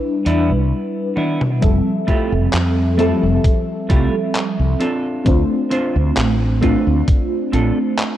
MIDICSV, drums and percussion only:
0, 0, Header, 1, 2, 480
1, 0, Start_track
1, 0, Tempo, 909091
1, 858, Time_signature, 4, 2, 24, 8
1, 4314, End_track
2, 0, Start_track
2, 0, Title_t, "Drums"
2, 137, Note_on_c, 9, 42, 68
2, 190, Note_off_c, 9, 42, 0
2, 617, Note_on_c, 9, 48, 61
2, 670, Note_off_c, 9, 48, 0
2, 746, Note_on_c, 9, 47, 73
2, 798, Note_off_c, 9, 47, 0
2, 857, Note_on_c, 9, 42, 83
2, 858, Note_on_c, 9, 36, 119
2, 910, Note_off_c, 9, 36, 0
2, 910, Note_off_c, 9, 42, 0
2, 1097, Note_on_c, 9, 42, 66
2, 1098, Note_on_c, 9, 36, 61
2, 1150, Note_off_c, 9, 36, 0
2, 1150, Note_off_c, 9, 42, 0
2, 1337, Note_on_c, 9, 39, 125
2, 1337, Note_on_c, 9, 42, 80
2, 1390, Note_off_c, 9, 39, 0
2, 1390, Note_off_c, 9, 42, 0
2, 1578, Note_on_c, 9, 42, 67
2, 1631, Note_off_c, 9, 42, 0
2, 1818, Note_on_c, 9, 36, 112
2, 1818, Note_on_c, 9, 42, 85
2, 1870, Note_off_c, 9, 36, 0
2, 1870, Note_off_c, 9, 42, 0
2, 2058, Note_on_c, 9, 36, 105
2, 2058, Note_on_c, 9, 42, 70
2, 2110, Note_off_c, 9, 36, 0
2, 2111, Note_off_c, 9, 42, 0
2, 2298, Note_on_c, 9, 39, 113
2, 2298, Note_on_c, 9, 42, 86
2, 2351, Note_off_c, 9, 39, 0
2, 2351, Note_off_c, 9, 42, 0
2, 2537, Note_on_c, 9, 42, 69
2, 2590, Note_off_c, 9, 42, 0
2, 2777, Note_on_c, 9, 42, 81
2, 2778, Note_on_c, 9, 36, 123
2, 2830, Note_off_c, 9, 42, 0
2, 2831, Note_off_c, 9, 36, 0
2, 3017, Note_on_c, 9, 42, 67
2, 3070, Note_off_c, 9, 42, 0
2, 3257, Note_on_c, 9, 39, 127
2, 3257, Note_on_c, 9, 42, 87
2, 3310, Note_off_c, 9, 39, 0
2, 3310, Note_off_c, 9, 42, 0
2, 3498, Note_on_c, 9, 36, 65
2, 3498, Note_on_c, 9, 42, 69
2, 3551, Note_off_c, 9, 36, 0
2, 3551, Note_off_c, 9, 42, 0
2, 3737, Note_on_c, 9, 42, 82
2, 3738, Note_on_c, 9, 36, 125
2, 3790, Note_off_c, 9, 42, 0
2, 3791, Note_off_c, 9, 36, 0
2, 3978, Note_on_c, 9, 42, 74
2, 4031, Note_off_c, 9, 42, 0
2, 4218, Note_on_c, 9, 39, 120
2, 4218, Note_on_c, 9, 42, 84
2, 4271, Note_off_c, 9, 39, 0
2, 4271, Note_off_c, 9, 42, 0
2, 4314, End_track
0, 0, End_of_file